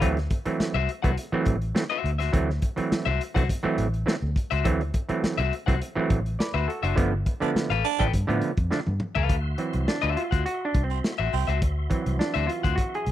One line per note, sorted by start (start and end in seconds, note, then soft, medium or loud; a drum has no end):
0.00 0.27 D2 loud
0.00 0.18 E3 loud
0.00 0.18 F#3 loud
0.00 0.18 A3 loud
0.00 0.19 C4 loud
0.00 0.16 G4 medium
0.00 0.16 B4 medium
0.00 kick loud
0.00 closed hi-hat medium
0.17 snare soft
0.17 closed hi-hat soft
0.30 0.38 A3 soft
0.30 0.38 C4 soft
0.30 kick loud
0.30 closed hi-hat medium
0.46 0.77 E3 medium
0.46 0.77 F#3 medium
0.46 0.77 A3 medium
0.46 0.78 C4 medium
0.46 muted fingered electric bass stroke soft
0.46 closed hi-hat medium
0.60 muted fingered electric bass stroke soft
0.60 snare loud
0.74 0.86 C2 loud
0.74 0.91 F#4 medium
0.74 0.90 C5 medium
0.74 0.90 E5 medium
0.89 closed hi-hat medium
1.02 1.16 C2 medium
1.02 1.11 E3 medium
1.02 1.11 F#3 medium
1.02 1.11 A3 medium
1.02 1.12 B3 loud
1.02 1.16 F#4 medium
1.02 1.16 C5 medium
1.02 1.15 F#5 medium
1.02 kick medium
1.02 closed hi-hat medium
1.17 1.25 A3 soft
1.17 1.26 C4 soft
1.17 closed hi-hat loud
1.32 1.56 E3 loud
1.32 1.56 F#3 loud
1.32 1.56 A3 loud
1.32 1.57 C4 loud
1.32 muted fingered electric bass stroke medium
1.46 1.72 A1 medium
1.46 kick loud
1.46 closed hi-hat medium
1.61 closed hi-hat soft
1.75 1.83 E3 medium
1.75 1.84 F#3 medium
1.75 1.84 A3 medium
1.75 1.84 C4 loud
1.75 snare loud
1.90 1.97 A3 soft
1.90 1.98 D4 soft
1.90 2.11 F#4 medium
1.90 2.10 C5 medium
1.90 2.10 E5 medium
2.04 2.29 D2 medium
2.04 closed hi-hat medium
2.18 2.32 F#4 soft
2.18 2.31 C5 medium
2.18 2.31 E5 medium
2.18 snare soft
2.18 closed hi-hat medium
2.33 2.59 D2 loud
2.33 2.50 E3 loud
2.33 2.50 F#3 loud
2.33 2.50 A3 loud
2.33 2.50 C4 loud
2.33 kick loud
2.33 closed hi-hat medium
2.50 snare soft
2.61 2.69 A3 soft
2.61 2.70 C4 soft
2.61 kick medium
2.61 closed hi-hat medium
2.76 3.08 E3 medium
2.76 3.09 F#3 medium
2.76 3.09 A3 medium
2.76 3.09 C4 medium
2.76 muted fingered electric bass stroke soft
2.76 closed hi-hat medium
2.92 muted fingered electric bass stroke soft
2.92 snare loud
3.06 3.18 C2 medium
3.06 3.22 F#4 medium
3.06 3.22 C5 loud
3.06 3.21 E5 loud
3.21 closed hi-hat medium
3.34 3.48 C2 medium
3.34 3.43 E3 medium
3.34 3.43 F#3 medium
3.34 3.43 A3 medium
3.34 3.43 C4 loud
3.34 3.48 F#4 medium
3.34 3.47 C5 medium
3.34 3.47 F#5 medium
3.34 kick medium
3.34 closed hi-hat medium
3.49 3.57 C4 soft
3.49 kick loud
3.49 closed hi-hat loud
3.63 3.87 E3 loud
3.63 3.87 F#3 loud
3.63 3.87 A3 loud
3.63 3.88 C4 loud
3.63 muted fingered electric bass stroke medium
3.78 4.03 A1 medium
3.78 closed hi-hat medium
3.94 closed hi-hat soft
4.06 4.15 E3 medium
4.06 4.15 F#3 medium
4.06 4.15 A3 medium
4.06 4.16 C4 loud
4.06 snare loud
4.22 4.34 D2 medium
4.22 4.29 A3 soft
4.22 4.29 C4 soft
4.36 kick medium
4.36 closed hi-hat medium
4.51 4.65 C#2 medium
4.51 4.67 F#4 medium
4.51 4.67 C5 medium
4.51 4.66 E5 medium
4.51 closed hi-hat soft
4.64 4.90 D2 loud
4.64 4.81 E3 loud
4.64 4.82 F#3 loud
4.64 4.82 A3 loud
4.64 4.82 C4 loud
4.64 kick loud
4.64 closed hi-hat medium
4.81 closed hi-hat soft
4.93 5.01 A3 soft
4.93 5.02 C4 soft
4.93 kick loud
4.93 closed hi-hat medium
5.09 5.40 E3 medium
5.09 5.41 F#3 medium
5.09 5.41 A3 medium
5.09 5.41 C4 loud
5.09 muted fingered electric bass stroke medium
5.09 closed hi-hat medium
5.23 muted fingered electric bass stroke soft
5.23 snare loud
5.38 5.50 C2 medium
5.38 5.54 F#4 medium
5.38 5.54 C5 medium
5.38 5.53 E5 loud
5.38 closed hi-hat soft
5.53 closed hi-hat medium
5.66 5.80 C2 medium
5.66 5.75 E3 medium
5.66 5.75 F#3 medium
5.66 5.75 A3 medium
5.66 5.75 C4 loud
5.66 5.79 F#4 soft
5.66 5.79 C5 medium
5.66 5.79 F#5 medium
5.66 kick medium
5.66 closed hi-hat medium
5.80 5.88 A3 soft
5.80 5.89 C4 soft
5.80 closed hi-hat loud
5.95 6.19 E3 loud
5.95 6.19 F#3 loud
5.95 6.20 A3 loud
5.95 6.20 C4 loud
5.95 muted fingered electric bass stroke soft
6.10 6.35 A1 medium
6.10 kick loud
6.10 closed hi-hat medium
6.26 closed hi-hat soft
6.39 6.53 B4 medium
6.39 6.54 D5 medium
6.39 muted fingered electric bass stroke soft
6.39 snare loud
6.54 6.66 D2 loud
6.54 6.70 F#4 medium
6.54 6.67 B4 medium
6.54 6.70 C5 medium
6.54 6.69 E5 medium
6.68 6.82 F#4 medium
6.68 6.83 A4 medium
6.68 closed hi-hat medium
6.83 6.95 F#1 medium
6.83 7.11 D4 medium
6.83 7.11 F#4 medium
6.83 6.96 F#4 medium
6.83 6.95 C5 medium
6.83 6.95 E5 medium
6.83 closed hi-hat medium
6.96 7.22 G1 loud
6.96 7.13 D3 loud
6.96 7.13 F3 loud
6.96 7.13 A3 loud
6.96 7.14 B3 loud
6.96 kick loud
6.96 closed hi-hat medium
7.25 7.33 A3 soft
7.25 7.34 B3 soft
7.25 kick medium
7.25 closed hi-hat medium
7.40 7.72 D3 loud
7.40 7.73 F3 medium
7.40 7.73 A3 medium
7.40 7.73 B3 loud
7.40 7.50 D4 medium
7.40 muted fingered electric bass stroke soft
7.40 closed hi-hat medium
7.55 muted fingered electric bass stroke soft
7.55 snare loud
7.70 7.82 A1 medium
7.70 7.86 A4 medium
7.70 7.86 B4 medium
7.70 7.85 F5 medium
7.70 closed hi-hat soft
7.84 8.03 D4 loud
7.84 closed hi-hat medium
7.99 8.12 A1 medium
7.99 8.07 D3 medium
7.99 8.07 F3 medium
7.99 8.07 A3 medium
7.99 8.07 D4 medium
7.99 8.12 A4 medium
7.99 8.12 B4 medium
7.99 8.11 G5 medium
7.99 kick medium
7.99 closed hi-hat medium
8.13 8.27 G2 loud
8.13 8.21 B3 soft
8.13 kick medium
8.13 closed hi-hat medium
8.27 8.41 A2 loud
8.27 8.51 D3 loud
8.27 8.51 F3 loud
8.27 8.52 A3 loud
8.27 8.52 B3 loud
8.27 closed hi-hat soft
8.41 closed hi-hat medium
8.57 8.69 F2 medium
8.57 kick loud
8.57 closed hi-hat soft
8.71 8.79 D3 medium
8.71 8.79 F3 medium
8.71 8.80 A3 medium
8.71 8.80 D4 loud
8.71 snare medium
8.86 8.99 G2 loud
8.86 8.93 A3 soft
8.86 8.94 B3 soft
8.86 high tom medium
9.00 mid tom medium
9.15 9.28 C#2 medium
9.15 9.36 A4 medium
9.15 9.35 B4 medium
9.15 9.35 F5 medium
9.15 floor tom medium
9.29 9.54 D2 loud
9.29 13.12 F#4 medium
9.29 13.12 E5 medium
9.29 13.12 C6 medium
9.29 kick loud
9.29 closed hi-hat medium
9.58 9.97 E3 medium
9.58 9.98 F#3 soft
9.58 9.98 C4 medium
9.58 closed hi-hat medium
9.73 9.86 C2 medium
9.73 closed hi-hat medium
9.88 10.18 D4 medium
9.88 snare loud
10.02 10.15 D2 medium
10.02 10.23 F#4 medium
10.02 10.22 C5 medium
10.02 10.22 E5 medium
10.02 closed hi-hat soft
10.17 10.44 F4 medium
10.17 closed hi-hat medium
10.31 10.44 D2 medium
10.31 10.44 F#4 soft
10.31 10.44 C5 medium
10.31 10.43 F#5 medium
10.31 kick medium
10.31 closed hi-hat medium
10.46 10.66 F#4 loud
10.46 closed hi-hat medium
10.65 10.83 D4 medium
10.74 11.00 C2 medium
10.74 kick loud
10.74 closed hi-hat medium
10.84 11.11 C4 medium
10.90 10.99 C4 medium
10.90 closed hi-hat soft
11.04 snare loud
11.18 11.31 A1 medium
11.18 11.34 F#4 medium
11.18 11.34 C5 medium
11.18 11.34 E5 medium
11.33 11.46 C2 medium
11.33 11.52 C4 medium
11.33 open hi-hat medium
11.47 11.62 C#2 loud
11.47 11.60 F#4 medium
11.47 11.60 C5 medium
11.47 11.59 E5 medium
11.47 closed hi-hat soft
11.62 11.87 D2 loud
11.62 kick loud
11.62 closed hi-hat medium
11.90 13.12 E3 medium
11.90 13.12 F#3 medium
11.90 13.12 C4 medium
11.90 kick medium
11.90 closed hi-hat medium
12.06 12.18 C2 medium
12.06 closed hi-hat medium
12.19 12.47 D4 medium
12.19 snare loud
12.34 12.47 D2 medium
12.34 12.50 F#4 medium
12.34 12.50 C5 medium
12.34 12.50 E5 loud
12.34 closed hi-hat soft
12.47 12.78 F4 medium
12.47 closed hi-hat medium
12.63 12.76 D2 medium
12.63 12.76 F#4 soft
12.63 12.76 C5 medium
12.63 12.75 F#5 medium
12.63 kick medium
12.63 closed hi-hat soft
12.76 12.97 F#4 medium
12.76 kick loud
12.76 closed hi-hat medium
12.94 13.12 G#4 loud
12.94 closed hi-hat soft
13.06 13.12 C2 medium
13.06 closed hi-hat medium